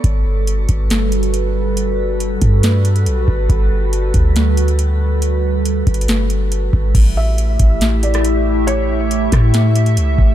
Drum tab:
CC |------------------------------------------------|------------------------------------------------|------------------------------------------------|------------------------------------------------|
HH |x-----------x-----x-----x-----x--x--x-----------|x-----------x-----x-----x-----x--x--x-----------|x-----------x-----x-----x-----x--x--x-----------|x-----------x-----x-x-x-x-----x-----x-----------|
SD |------------------------o-----------------------|------------------------o-----------------------|------------------------o-----------------------|------------------------o-----------------------|
BD |o-----------------o-----------------------------|------------------o-----------------------o-----|o-----------------o-----------------------------|------------------o-----------------------o-----|

CC |x-----------------------------------------------|------------------------------------------------|
HH |x-----------x-----x-----x-----x--x--x-----------|x-----------x-----x-----x-----x--x--x-----------|
SD |------------------------o--------r--------------|------------------r-----o-----------------------|
BD |o-----------------o-----------------------------|------------------o-----------------------o-----|